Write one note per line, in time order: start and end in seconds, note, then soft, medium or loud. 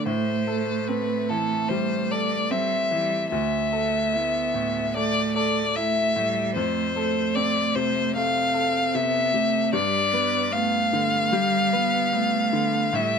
0.00 2.51 A3 medium
0.06 1.66 A2 medium
0.06 0.89 C5 medium
0.47 1.13 A4 medium
0.87 1.54 C4 soft
0.87 1.30 B4 medium
1.29 1.95 E3 soft
1.29 1.70 A4 medium
1.69 2.35 G3 medium
1.69 2.13 C5 medium
2.11 2.75 A4 medium
2.11 2.52 D5 medium
2.51 2.91 G3 medium
2.51 3.15 C4 medium
2.51 3.31 E5 medium
2.91 3.32 E3 soft
2.91 3.32 G3 medium
3.32 4.90 D2 medium
3.32 4.17 A3 medium
3.32 4.91 E5 medium
3.73 4.38 A4 medium
4.13 4.98 B3 medium
4.13 4.78 E4 soft
4.54 5.19 A2 soft
4.95 5.60 A3 medium
4.95 5.76 A3 medium
4.95 5.35 D5 medium
5.36 6.00 A4 medium
5.36 5.77 D5 medium
5.76 6.19 A3 medium
5.76 6.40 E4 medium
5.76 6.54 E5 medium
6.16 6.56 A2 soft
6.16 6.58 G3 medium
6.55 8.11 F2 medium
6.55 6.96 A3 medium
6.55 7.37 C5 medium
6.96 8.18 A3 medium
6.96 7.60 A4 medium
7.35 8.00 C4 medium
7.35 7.76 D5 medium
7.75 8.39 C3 medium
7.75 8.15 C5 medium
8.16 8.79 A3 medium
8.16 8.96 C4 medium
8.16 8.96 F5 medium
8.54 9.18 A4 medium
8.94 9.33 C3 medium
8.94 9.34 B3 medium
8.94 9.73 E5 medium
9.33 9.74 C3 medium
9.33 9.75 A3 medium
9.73 11.29 G2 medium
9.73 10.14 G3 medium
9.73 10.54 D5 medium
10.13 10.53 B3 medium
10.13 10.78 B4 medium
10.53 11.35 A3 medium
10.53 11.18 B3 medium
10.53 12.97 F5 medium
10.93 11.57 D3 medium
11.33 11.97 G3 medium
11.33 11.75 G3 medium
11.73 12.15 B3 medium
11.73 12.38 B4 medium
12.13 12.94 A3 medium
12.13 12.78 B3 medium
12.53 12.94 D3 medium
12.93 13.19 A2 medium
12.93 13.19 G3 medium
12.93 13.19 E5 medium